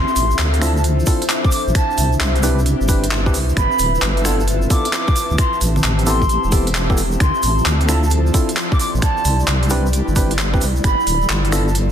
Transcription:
Already playing: ambient pad C4 D4 G4 E5 A5, analog synth pad C4 E4 F4 A4, flute C6
0.08 ambient pad C5, shaker
0.12 wobble bass A1, ambient pad F3, open hi-hat, shaker
0.31 shaker
0.38 wobble bass D2, clap, closed hi-hat, shaker
0.54 closed hi-hat, shaker
0.61 synth stab C4 D4 E4 F4 A4, flute A5, finger snap, open hi-hat, shaker
0.76 flute A5, shaker
0.84 closed hi-hat, shaker
1.00 shaker
1.06 synth stab C4 D4 E4 F4 A4, kick, open hi-hat, shaker
1.22 closed hi-hat, shaker
1.30 clap, closed hi-hat, shaker
1.45 flute D6, kick, shaker
1.51 flute D6, open hi-hat, shaker
1.67 wobble bass A1, shaker
1.75 analog synth pad C4 D4 E4 G4, flute A5, finger snap, kick, closed hi-hat, shaker
1.91 shaker
1.98 wobble bass C2, open hi-hat, shaker
2.04 ambient pad B4
2.12 shaker
2.20 wobble bass C2, clap, closed hi-hat, shaker
2.36 closed hi-hat, shaker
2.43 synth stab C4 D4 E4 G4 B4, open hi-hat, shaker
2.59 shaker
2.66 closed hi-hat, shaker
2.81 wobble bass G1, shaker
2.88 synth stab C4 D4 E4 G4 B4, kick, open hi-hat, shaker
3.04 closed hi-hat, shaker
3.11 clap, closed hi-hat, shaker
3.26 synth stab C4 D4 E4 G4 B4, kick, shaker
3.34 wobble bass C2, open hi-hat, shaker
3.49 shaker
3.57 wobble bass G1, ambient pad F3, analog synth pad F4 A4, flute B5, finger snap, kick, closed hi-hat, shaker
3.71 shaker
3.79 wobble bass D1, open hi-hat, shaker
3.95 shaker
3.99 wobble bass G1, ambient pad A5, clap, closed hi-hat, shaker
4.17 closed hi-hat, shaker
4.25 synth stab B3 D4 E4 F4 A4, flute A5, finger snap, open hi-hat, shaker
4.39 flute A5, shaker
4.48 closed hi-hat, shaker
4.62 shaker
4.70 synth stab B3 D4 E4 F4 A4, flute D6, kick, open hi-hat, shaker
4.85 closed hi-hat, shaker
4.93 clap, closed hi-hat, shaker
5.07 kick, shaker
5.16 open hi-hat, shaker
5.30 wobble bass D2, shaker
5.38 analog synth pad C4 G4 C5, ambient pad G4, flute C6, finger snap, kick, closed hi-hat, shaker
5.53 ambient pad C4, shaker
5.61 wobble bass A1, open hi-hat, shaker
5.76 high conga, shaker
5.83 wobble bass A1, clap, closed hi-hat, shaker
5.99 closed hi-hat, shaker
6.06 synth stab B3 C4 E4 G4 A4, flute C6, open hi-hat, shaker
6.22 kick, shaker
6.29 closed hi-hat, shaker
6.44 wobble bass E1, shaker
6.52 synth stab B3 C4 E4 G4 A4, kick, open hi-hat, shaker
6.67 closed hi-hat, shaker
6.75 clap, closed hi-hat, shaker
6.90 wobble bass E1, synth stab B3 C4 E4 G4 A4, kick, shaker
6.97 open hi-hat, shaker
7.12 shaker
7.20 wobble bass D2, ambient pad F3, analog synth pad C4 E4 F4 A4, flute C6, finger snap, kick, closed hi-hat, shaker
7.33 ambient pad D5, shaker
7.43 wobble bass A1, open hi-hat, shaker
7.58 shaker
7.66 wobble bass D2, clap, closed hi-hat, shaker
7.81 closed hi-hat, shaker
7.89 synth stab C4 D4 E4 F4 A4, flute A5, finger snap, open hi-hat, shaker
7.97 ambient pad C6
8.03 flute A5, shaker
8.10 closed hi-hat, shaker
8.27 shaker
8.34 synth stab C4 D4 E4 F4 A4, kick, open hi-hat, shaker
8.49 closed hi-hat, shaker
8.57 clap, closed hi-hat, shaker
8.72 flute D6, kick, shaker
8.79 flute D6, open hi-hat, shaker
8.94 wobble bass A1, shaker
9.02 analog synth pad G3 D4 G4, ambient pad E4, flute A5, finger snap, kick, closed hi-hat, shaker
9.17 shaker
9.25 wobble bass C2, open hi-hat, shaker
9.40 shaker
9.47 wobble bass C2, clap, closed hi-hat, shaker
9.63 closed hi-hat, shaker
9.70 synth stab C4 D4 E4 G4 B4, open hi-hat, shaker
9.86 shaker
9.93 closed hi-hat, shaker
10.08 wobble bass G1, shaker
10.16 synth stab C4 D4 E4 G4 B4, kick, open hi-hat, shaker
10.31 closed hi-hat, shaker
10.39 clap, closed hi-hat, shaker
10.54 synth stab C4 D4 E4 G4 B4, kick, shaker
10.61 wobble bass C2, open hi-hat, shaker
10.76 shaker
10.84 wobble bass G1, ambient pad F3, analog synth pad F4 A4, flute B5, finger snap, kick, closed hi-hat, shaker
11.00 ambient pad E5, shaker
11.07 wobble bass D1, open hi-hat, shaker
11.22 shaker
11.29 wobble bass G1, ambient pad A5, clap, closed hi-hat, shaker
11.45 closed hi-hat, shaker
11.52 synth stab B3 D4 E4 F4 A4, flute A5, ambient pad B5, finger snap, open hi-hat, shaker
11.68 flute A5, shaker
11.75 closed hi-hat, shaker

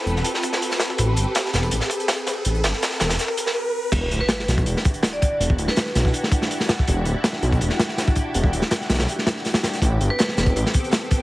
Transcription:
Already playing: string machine C4 G4 A4 B4, riser
0.06 detuned saw bass E1, closed hi-hat
0.16 snare
0.24 closed hi-hat
0.34 snare
0.43 kick, closed hi-hat
0.53 snare
0.62 closed hi-hat, open hi-hat
0.71 snare
0.79 snare, closed hi-hat
0.89 kick, snare
0.98 detuned saw bass A1, kick, closed hi-hat
1.16 detuned saw bass G1, closed hi-hat
1.35 snare, closed hi-hat
1.45 snare
1.53 detuned saw bass E1, snare, closed hi-hat
1.63 kick, closed hi-hat
1.71 detuned saw bass A1, closed hi-hat
1.81 snare
1.90 kick, closed hi-hat
2.00 closed hi-hat
2.08 snare, closed hi-hat
2.17 closed hi-hat
2.27 kick, snare, closed hi-hat
2.36 snare
2.45 detuned saw bass A1, closed hi-hat
2.55 closed hi-hat
2.64 detuned saw bass G1, snare, closed hi-hat
2.73 snare
2.82 snare, closed hi-hat
2.91 snare
3.00 detuned saw bass E1, snare, closed hi-hat
3.09 snare, closed hi-hat
3.19 snare, closed hi-hat
3.28 kick
3.37 closed hi-hat
3.46 snare
3.92 detuned saw bass E1, string machine D4 E4 F#4 G4, kick, closed hi-hat, crash, sub drop
4.11 detuned saw bass D1, closed hi-hat
4.21 vibraphone B4
4.29 vibraphone B4, snare, closed hi-hat
4.39 snare
4.48 detuned saw bass B1, snare, closed hi-hat
4.57 kick, closed hi-hat
4.66 detuned saw bass E1, closed hi-hat
4.77 snare
4.84 kick, closed hi-hat
4.94 closed hi-hat
5.03 snare, closed hi-hat
5.13 vibraphone D5, closed hi-hat
5.22 vibraphone D5, kick, closed hi-hat
5.40 detuned saw bass E1, closed hi-hat
5.50 kick
5.58 detuned saw bass D1, closed hi-hat
5.68 vibraphone B4, snare
5.76 snare, closed hi-hat
5.86 snare
5.95 detuned saw bass B1, snare, closed hi-hat
6.05 kick, snare
6.13 closed hi-hat
6.23 snare
6.32 kick, closed hi-hat
6.42 snare
6.51 closed hi-hat, open hi-hat
6.60 snare
6.69 snare, closed hi-hat
6.78 kick, snare
6.88 detuned saw bass E1, kick, closed hi-hat
7.05 detuned saw bass D1, closed hi-hat
7.24 snare, closed hi-hat
7.33 snare
7.43 detuned saw bass B1, closed hi-hat
7.52 kick, closed hi-hat
7.61 detuned saw bass E1, closed hi-hat
7.70 snare
7.79 snare, closed hi-hat
7.88 snare, closed hi-hat
7.97 snare, closed hi-hat
8.07 kick, closed hi-hat
8.15 kick, closed hi-hat
8.34 detuned saw bass E1, closed hi-hat
8.44 kick
8.53 detuned saw bass D1, closed hi-hat
8.62 snare
8.71 snare, closed hi-hat
8.81 snare
8.90 detuned saw bass B1, snare, closed hi-hat
8.94 snare, closed hi-hat
8.99 snare, closed hi-hat
9.08 closed hi-hat
9.19 snare
9.27 snare, closed hi-hat
9.36 snare
9.45 snare, closed hi-hat, open hi-hat
9.54 snare, closed hi-hat
9.63 snare, closed hi-hat
9.73 snare, closed hi-hat
9.82 detuned saw bass A1, string machine B3 C4 A4, kick, closed hi-hat
10.01 detuned saw bass G1, closed hi-hat
10.10 vibraphone B4
10.19 vibraphone B4, snare, closed hi-hat
10.28 snare
10.37 detuned saw bass E1, vibraphone B4, snare, closed hi-hat
10.46 kick, closed hi-hat
10.56 detuned saw bass A1, closed hi-hat
10.66 snare
10.74 kick, closed hi-hat
10.84 closed hi-hat
10.91 snare, closed hi-hat
11.03 closed hi-hat
11.11 kick, closed hi-hat

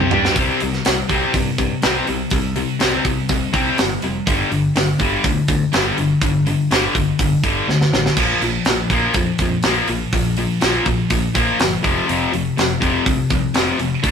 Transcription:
Already playing: distorted electric guitar C3 G3 C4
0.00 mid tom
0.11 picked electric bass G2, distorted electric guitar G3 D4 G4, floor tom
0.25 snare
0.36 picked electric bass C2, distorted electric guitar C3 G3 C4, kick, open hi-hat
0.60 picked electric bass C2, distorted electric guitar C3 G3, open hi-hat
0.73 snare
0.85 picked electric bass C2, distorted electric guitar C3 G3, snare, open hi-hat
1.09 picked electric bass C2, distorted electric guitar C3 G3 C4, kick, open hi-hat
1.34 picked electric bass G2, distorted electric guitar C3 G3, kick, open hi-hat
1.58 picked electric bass G2, distorted electric guitar C3 G3, kick, open hi-hat
1.82 picked electric bass C2, distorted electric guitar C3 G3 C4, snare, open hi-hat
2.07 picked electric bass C2, distorted electric guitar C3 G3, open hi-hat
2.30 picked electric bass C2, distorted electric guitar C3 G3, kick, open hi-hat
2.56 distorted electric guitar C3 G3, open hi-hat
2.79 picked electric bass C2, distorted electric guitar C3 G3 C4, snare, open hi-hat
3.05 picked electric bass C2, distorted electric guitar C3 G3, kick, open hi-hat
3.29 picked electric bass C2, distorted electric guitar C3 G3, kick, open hi-hat
3.53 picked electric bass C2, distorted electric guitar C3 G3 C4, kick, open hi-hat
3.78 picked electric bass G1, distorted electric guitar C3 G3, snare, open hi-hat
4.02 picked electric bass F1, distorted electric guitar C3 G3, open hi-hat
4.27 picked electric bass G1, distorted electric guitar G2 D3 G3, kick, open hi-hat
4.50 picked electric bass G1, distorted electric guitar G2 D3, open hi-hat
4.76 picked electric bass G1, distorted electric guitar G2 D3, snare, open hi-hat
4.99 picked electric bass G1, distorted electric guitar G2 D3 G3, kick, open hi-hat
5.24 picked electric bass D2, distorted electric guitar G2 D3, kick, open hi-hat
5.48 picked electric bass D2, distorted electric guitar G2 D3, kick, open hi-hat
5.73 picked electric bass G1, distorted electric guitar G2 D3 G3, snare, open hi-hat
5.98 picked electric bass G1, distorted electric guitar G2 D3, open hi-hat
6.21 picked electric bass G1, distorted electric guitar G2 D3, kick, open hi-hat
6.47 distorted electric guitar G2 D3, open hi-hat
6.71 picked electric bass G1, distorted electric guitar G2 D3 G3, snare, open hi-hat
6.95 picked electric bass G1, distorted electric guitar G2 D3, kick, open hi-hat
7.19 picked electric bass G1, distorted electric guitar G2 D3, kick, open hi-hat
7.44 picked electric bass G1, distorted electric guitar G2 D3 G3, kick, open hi-hat
7.68 picked electric bass D2, distorted electric guitar G2 D3, snare
7.81 snare
7.92 picked electric bass A1, distorted electric guitar G2 D3, snare
8.06 snare
8.17 picked electric bass A#1, distorted electric guitar A#2 F3 A#3, kick, open hi-hat, crash
8.41 picked electric bass A#1, distorted electric guitar A#2 F3, open hi-hat
8.65 picked electric bass A#1, distorted electric guitar A#2, snare, open hi-hat
8.69 distorted electric guitar F3
8.90 picked electric bass A#1, distorted electric guitar A#2 F3 A#3, kick, open hi-hat
9.14 picked electric bass F2, distorted electric guitar A#2 F3, kick, open hi-hat
9.38 picked electric bass F2, distorted electric guitar A#2 F3, kick, open hi-hat
9.63 picked electric bass A#1, distorted electric guitar A#2 F3 A#3, snare, open hi-hat
9.88 picked electric bass A#1, distorted electric guitar A#2 F3, open hi-hat
10.13 picked electric bass A#1, distorted electric guitar A#2 F3, kick, open hi-hat
10.37 distorted electric guitar A#2 F3, open hi-hat
10.61 picked electric bass A#1, distorted electric guitar A#2 F3 A#3, snare, open hi-hat
10.86 picked electric bass A#1, distorted electric guitar A#2 F3, kick, open hi-hat
11.10 picked electric bass A#1, distorted electric guitar A#2 F3, kick, open hi-hat
11.35 picked electric bass A#1, distorted electric guitar A#2 F3 A#3, kick, open hi-hat
11.59 picked electric bass G1, distorted electric guitar A#2 F3, snare, open hi-hat
11.83 picked electric bass F1, distorted electric guitar F2 C3 F3, kick, open hi-hat
12.07 picked electric bass F1, distorted electric guitar F2 C3 F3, open hi-hat
12.33 picked electric bass F1, distorted electric guitar F2 C3, open hi-hat
12.57 picked electric bass F1, distorted electric guitar F2 C3, snare, open hi-hat
12.80 picked electric bass F1, distorted electric guitar F2 C3 F3, kick, open hi-hat
13.06 picked electric bass C2, distorted electric guitar F2 C3, kick, open hi-hat
13.30 picked electric bass C2, distorted electric guitar F2 C3, kick, open hi-hat
13.54 picked electric bass F1, distorted electric guitar F2 C3 F3, snare, open hi-hat
13.79 picked electric bass F1, distorted electric guitar F2 C3, open hi-hat
14.03 picked electric bass D2, distorted electric guitar D3 A3 D4, kick, open hi-hat

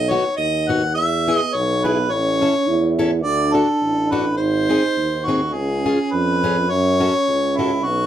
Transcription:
Already playing: tuba B1, harmonica D#5
0.10 steel-string acoustic guitar B3 D#4 F#4, harmonica C#5
0.37 tuba D#2, harmonica D#5
0.68 steel-string acoustic guitar B3 D#4 F#4, harmonica F#5
0.95 tuba E2, euphonium B3, harmonica E5
1.28 steel-string acoustic guitar B3 E4 G#4
1.35 harmonica D#5
1.53 tuba B1, harmonica C#5
1.84 steel-string acoustic guitar B3 E4 G#4, harmonica B4
2.11 tuba A1, euphonium C#4, harmonica C#5
2.42 steel-string acoustic guitar C#4 E4 A4
2.67 tuba E2, euphonium E4
2.99 steel-string acoustic guitar C#4 E4 A4
3.22 tuba D2, euphonium D4, harmonica D5
3.53 steel-string acoustic guitar D4 F#4 A4, harmonica A4
3.81 tuba A1
4.11 steel-string acoustic guitar D4 F#4 A4, harmonica B4
4.37 tuba G#1, euphonium D#4, harmonica C5
4.69 steel-string acoustic guitar C4 D#4 G#4
4.97 tuba D#2
5.26 steel-string acoustic guitar C4 D#4 G#4, harmonica F#4
5.53 tuba C#2, euphonium C#4, harmonica G#4
5.86 steel-string acoustic guitar C#4 F4 G#4
6.12 tuba F2, harmonica B4
6.44 steel-string acoustic guitar C#4 F4 G#4
6.69 tuba F#2, euphonium C#4, harmonica C#5
7.00 steel-string acoustic guitar C#4 F#4 A4
7.28 tuba C#2
7.57 steel-string acoustic guitar C#4 F#4 A4, harmonica E4
7.83 tuba B1, euphonium B3, harmonica F#4

